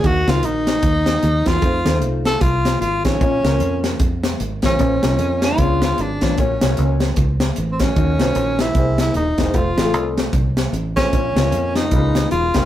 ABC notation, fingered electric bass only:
X:1
M:4/4
L:1/8
Q:"Swing" 1/4=152
K:Bbm
V:1 name="Fingered electric bass" clef=bass
E,, D,, B,,,2 E,,2 E,, =E,, | F,, E,, C,,2 C,,2 A,,, =A,,, | B,,, D,, F,,2 F,,2 A,,, =A,,, | B,,, C,, F,,2 D,,2 A,,, =A,,, |
B,,, C,, D,,2 D,,2 =A,,,2 | E,, C,, B,,,2 C,,2 ^D,,, =E,,, | F,,, =A,,, C,,2 C,,2 A,,,2 | B,,, D,, F,,2 D,,2 =E,,, F,,, |]